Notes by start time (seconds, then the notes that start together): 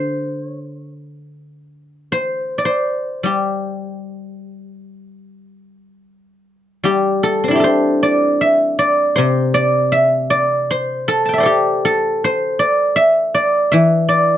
Already playing: D3 C5 D5
0.45 C#5
0.61 C5
0.78 C#5
0.94 C5
2.12 C5
2.58 D5
2.65 C5
3.23 G3 G4
6.84 G3 G4
7.23 A4
7.44 C4
7.48 D4 E4
7.55 G4
7.60 A4 C5
8.03 D5
8.41 E5
8.79 D5
9.16 C3 C5
9.54 D5
9.92 E5
10.30 D5
10.71 C5
11.08 A4
11.25 G5 A5
11.33 E5
11.38 C5 D5
11.43 G4 A4
11.85 A4
12.24 C5
12.59 D5
12.96 E5
13.34 D5
13.72 E3 E5
14.09 D5